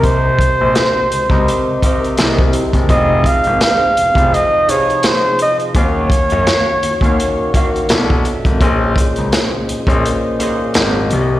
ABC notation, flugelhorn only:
X:1
M:4/4
L:1/8
Q:"Swing 16ths" 1/4=84
K:Bbm
V:1 name="Flugelhorn"
c6 z2 | e f f2 e d c e | d6 z2 | z8 |]